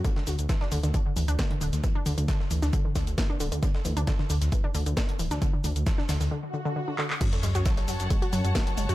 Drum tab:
CC |----------------|----------------|----------------|----------------|
RD |----------------|----------------|----------------|----------------|
HH |x-oxx-oxx-oxxxox|x-oxx-oox-oxx-ox|x-oxx-oxx-oxxxox|x-oxx-oo--------|
TB |x-x-x-x-x-x-x-x-|x-x-x-x-x-x-x-x-|x-x-x-x-x-x-x-x-|x-x-x-x---------|
SH |x-xxx-xxx-xxx-xx|x-xxx-xxx-xxx-xx|x-xxx-xxx-xxx-xx|x-xxx-xx--------|
CP |----------------|----------------|----------------|--------------xx|
SD |-o--oo-o----o--o|----oo-o--o-o---|-o--oo-o----o--o|----oooo--------|
BD |o---o---o---o---|o---o---o-o-o---|o---o---o---o---|o---o-----------|

CC |x---------------|
RD |x---x---x---x---|
HH |xxoxxxoxxxoxxxox|
TB |x-x-x-x-x-x-x-x-|
SH |x-xxx-xxx-xxx-xx|
CP |----------------|
SD |-o--oo-o----o--o|
BD |o---o---o---o---|